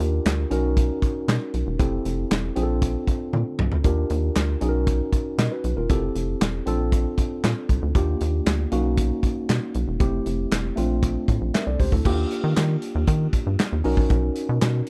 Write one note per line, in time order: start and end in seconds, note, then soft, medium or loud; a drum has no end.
0.00 0.20 D#2 loud
0.00 0.51 D4 medium
0.00 0.51 F4 medium
0.00 0.51 G4 medium
0.00 0.51 A#4 medium
0.00 closed hi-hat medium
0.26 0.45 D2 medium
0.26 snare loud
0.26 clap medium
0.26 closed hi-hat loud
0.50 0.91 B1 medium
0.50 1.77 C#4 medium
0.50 1.77 D#4 medium
0.50 1.77 F#4 medium
0.50 1.77 A#4 medium
0.50 closed hi-hat medium
0.77 kick loud
0.77 closed hi-hat medium
1.02 kick loud
1.02 closed hi-hat medium
1.28 1.38 B2 medium
1.28 snare loud
1.28 clap medium
1.28 closed hi-hat medium
1.54 1.64 B1 medium
1.54 closed hi-hat medium
1.67 1.77 E1 medium
1.79 1.99 F1 loud
1.79 2.54 C4 medium
1.79 2.56 E4 medium
1.79 2.57 G4 medium
1.79 2.57 A4 medium
1.79 kick loud
1.79 closed hi-hat medium
2.05 2.25 F1 loud
2.05 closed hi-hat medium
2.31 2.51 E1 loud
2.31 snare loud
2.31 clap medium
2.31 closed hi-hat loud
2.55 2.96 A#1 medium
2.55 3.82 C4 medium
2.55 3.82 D4 medium
2.55 3.82 F4 medium
2.55 2.63 G#4 medium
2.55 closed hi-hat medium
2.63 3.86 A4 medium
2.82 kick loud
2.82 closed hi-hat loud
3.07 kick medium
3.07 closed hi-hat medium
3.33 3.43 A#2 loud
3.33 high tom medium
3.59 3.69 C2 medium
3.59 mid tom medium
3.72 3.82 D2 medium
3.72 floor tom medium
3.84 4.04 D#2 loud
3.84 4.61 D4 medium
3.84 4.61 F4 medium
3.84 4.61 G4 medium
3.84 4.62 A#4 medium
3.84 kick loud
3.84 closed hi-hat medium
4.10 4.30 D#2 loud
4.10 closed hi-hat medium
4.36 4.56 D2 medium
4.36 snare loud
4.36 clap medium
4.36 closed hi-hat loud
4.61 5.01 B1 loud
4.61 5.87 C#4 medium
4.61 5.87 D#4 medium
4.61 5.37 F#4 medium
4.61 4.68 G#4 medium
4.61 closed hi-hat medium
4.69 5.38 A#4 medium
4.87 kick loud
4.87 closed hi-hat medium
5.13 kick medium
5.13 closed hi-hat medium
5.38 5.48 B2 medium
5.38 5.51 A#4 soft
5.38 5.51 D#5 medium
5.38 snare loud
5.38 clap medium
5.38 closed hi-hat medium
5.52 5.76 F#4 medium
5.52 5.76 B4 medium
5.64 5.74 B1 loud
5.64 closed hi-hat medium
5.77 5.87 E1 loud
5.77 6.02 F4 medium
5.77 6.01 A#4 medium
5.89 6.10 F1 loud
5.89 6.65 C4 medium
5.89 6.67 E4 medium
5.89 6.67 G4 medium
5.89 6.66 A4 medium
5.89 kick loud
5.89 closed hi-hat medium
6.15 6.35 F1 loud
6.15 closed hi-hat medium
6.41 6.61 E1 medium
6.41 snare loud
6.41 clap medium
6.41 closed hi-hat medium
6.66 7.06 A#1 medium
6.66 7.92 C4 medium
6.66 7.92 D4 medium
6.66 7.93 F4 medium
6.66 7.93 A4 medium
6.66 closed hi-hat medium
6.92 kick loud
6.92 closed hi-hat medium
7.18 kick medium
7.18 closed hi-hat medium
7.44 7.54 A#2 loud
7.44 snare loud
7.44 clap medium
7.44 closed hi-hat medium
7.69 7.79 C2 medium
7.69 kick medium
7.69 closed hi-hat medium
7.82 7.92 D2 medium
7.95 8.15 D#2 loud
7.95 8.70 A#3 medium
7.95 8.72 D4 medium
7.95 8.72 F4 medium
7.95 8.72 G4 medium
7.95 kick loud
7.95 closed hi-hat medium
8.21 8.41 D#2 loud
8.21 closed hi-hat medium
8.46 8.66 D2 medium
8.46 snare loud
8.46 clap medium
8.46 closed hi-hat loud
8.71 9.12 B1 loud
8.71 9.97 A#3 medium
8.71 9.97 C#4 medium
8.71 9.98 D#4 medium
8.71 9.98 F#4 medium
8.71 closed hi-hat medium
8.97 kick loud
8.97 closed hi-hat loud
9.23 kick medium
9.23 closed hi-hat medium
9.49 9.59 B2 medium
9.49 snare loud
9.49 clap medium
9.49 closed hi-hat medium
9.75 9.85 B1 loud
9.75 closed hi-hat medium
9.88 9.97 E1 medium
10.00 10.20 F1 loud
10.00 10.75 A3 medium
10.00 10.76 C4 medium
10.00 10.77 E4 medium
10.00 10.77 G4 medium
10.00 kick loud
10.00 closed hi-hat medium
10.26 10.46 F1 loud
10.26 closed hi-hat medium
10.52 10.71 E1 medium
10.52 snare loud
10.52 clap medium
10.52 closed hi-hat loud
10.76 11.17 A#1 medium
10.76 12.02 A3 medium
10.76 12.03 C4 medium
10.76 12.03 D4 medium
10.76 11.53 F4 medium
10.76 closed hi-hat medium
11.03 kick loud
11.03 closed hi-hat medium
11.28 11.38 A2 medium
11.28 kick loud
11.28 closed hi-hat medium
11.41 11.51 A#1 medium
11.54 11.67 A#4 soft
11.54 11.66 E5 medium
11.54 snare loud
11.54 clap medium
11.54 closed hi-hat medium
11.67 11.77 C2 medium
11.67 11.79 A4 soft
11.67 11.79 D5 medium
11.80 11.89 C#2 medium
11.80 11.92 G4 medium
11.80 11.92 C5 medium
11.80 kick medium
11.80 open hi-hat medium
11.92 12.02 D2 medium
11.92 12.17 E4 medium
11.92 12.17 A4 medium
11.92 kick medium
12.05 12.25 D#2 loud
12.05 13.81 A#3 medium
12.05 13.81 D4 medium
12.05 13.81 F4 medium
12.05 13.82 G4 medium
12.05 kick loud
12.05 crash loud
12.31 closed hi-hat medium
12.44 12.54 D#3 loud
12.56 12.77 D#3 loud
12.56 snare loud
12.56 clap medium
12.56 closed hi-hat loud
12.82 closed hi-hat medium
12.95 13.05 D#2 loud
13.07 13.27 D#3 loud
13.07 kick loud
13.07 closed hi-hat medium
13.33 kick medium
13.33 closed hi-hat medium
13.47 13.56 G2 medium
13.59 snare loud
13.59 clap medium
13.59 closed hi-hat medium
13.72 13.82 D#2 medium
13.84 13.95 B1 loud
13.84 14.89 C#4 medium
13.84 14.89 D#4 medium
13.84 14.89 F#4 medium
13.84 14.89 A#4 medium
13.84 open hi-hat medium
13.97 14.07 A#1 medium
13.97 kick medium
14.10 14.30 B1 loud
14.10 kick loud
14.10 closed hi-hat medium
14.36 closed hi-hat medium
14.49 14.59 B2 loud
14.61 14.82 B2 loud
14.61 snare loud
14.61 clap medium
14.61 closed hi-hat loud